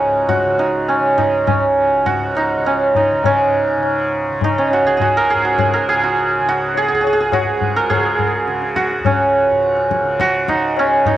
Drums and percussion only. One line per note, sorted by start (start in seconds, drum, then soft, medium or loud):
0.29 tabla tin medium
0.29 tabla ge medium
0.58 tabla te medium
0.88 tabla na medium
1.18 tabla tin medium
1.18 tabla ge medium
1.48 tabla na loud
1.48 tabla ge medium
2.06 tabla tin medium
2.06 tabla ge medium
2.35 tabla te medium
2.65 tabla na medium
2.95 tabla tin medium
2.95 tabla ge medium
3.24 tabla tin loud
3.24 tabla ge medium
3.83 tabla na medium
4.41 tabla na medium
4.41 tabla ge medium
4.71 tabla te medium
5.00 tabla tin medium
5.00 tabla ge medium
5.58 tabla tin medium
5.58 tabla ge medium
6.16 tabla te medium
6.46 tabla te medium
6.74 tabla tin medium
7.04 tabla na medium
7.32 tabla na medium
7.32 tabla ge medium
7.61 tabla ge medium
7.90 tabla na medium
7.90 tabla ge medium
8.19 tabla ge medium
8.47 tabla te medium
8.62 tabla te medium
8.76 tabla ke medium
8.91 tabla te medium
9.05 tabla tin loud
9.05 tabla ge loud
9.62 tabla te medium
9.77 tabla te medium
9.91 tabla ke medium
10.05 tabla te medium
10.20 tabla ke medium
10.48 tabla ke medium
10.77 tabla na medium
11.06 tabla tin loud
11.06 tabla ge medium